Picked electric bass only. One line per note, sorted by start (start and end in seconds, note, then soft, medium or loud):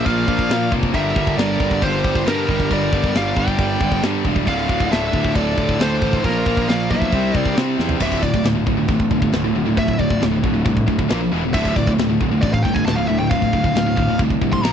0.06 0.24 A#1 medium
0.28 0.46 A#1 medium
0.50 0.68 A#2 loud
0.72 0.90 F1 medium
0.94 1.12 G1 loud
1.16 1.34 G1 loud
1.38 1.56 G1 loud
1.60 1.78 G1 medium
1.82 2.00 G1 loud
2.05 2.22 G1 medium
2.27 2.45 G2 loud
2.49 2.67 G1 medium
2.71 2.89 G1 loud
2.93 3.11 G1 loud
3.15 3.33 G1 loud
3.37 3.55 G1 medium
3.59 3.77 G1 medium
3.81 3.99 G1 medium
4.03 4.21 G2 medium
4.25 4.43 E1 medium
4.48 4.65 D1 loud
4.69 4.87 D1 loud
4.91 5.09 D1 loud
5.14 5.32 D1 loud
5.35 5.54 D1 loud
5.58 5.76 D1 medium
5.80 5.98 D2 medium
6.02 6.20 A1 medium
6.24 6.42 A#1 loud
6.46 6.64 A#1 loud
6.69 6.87 A#1 medium
6.91 7.09 B1 medium
7.13 7.31 C2 medium
7.35 7.53 C2 medium
7.57 7.75 C3 medium
7.79 7.97 E2 medium
8.01 8.19 D1 loud
8.23 8.41 D1 medium
8.45 8.63 D1 medium
8.67 8.85 D1 medium
8.89 9.07 A1 loud
9.11 9.29 G1 medium
9.34 9.51 D1 medium
9.56 9.73 D1 medium
9.78 9.95 D1 loud
10.00 10.17 D1 medium
10.23 10.40 D1 medium
10.44 10.61 D1 loud
10.66 10.83 C2 loud
10.88 11.06 D1 medium
11.11 11.28 A#1 medium
11.33 11.50 E1 medium
11.54 11.72 D1 loud
11.76 11.94 D1 loud
11.99 12.16 D1 medium
12.21 12.38 D1 medium
12.43 12.60 A1 loud
12.65 12.82 G1 medium
12.88 13.05 D1 medium
13.09 13.26 D1 medium
13.31 13.48 D1 loud
13.53 13.70 D1 loud
13.76 13.93 D1 medium
13.97 14.15 D1 medium
14.19 14.37 C2 loud
14.42 14.59 C2 medium
14.64 14.73 A#1 medium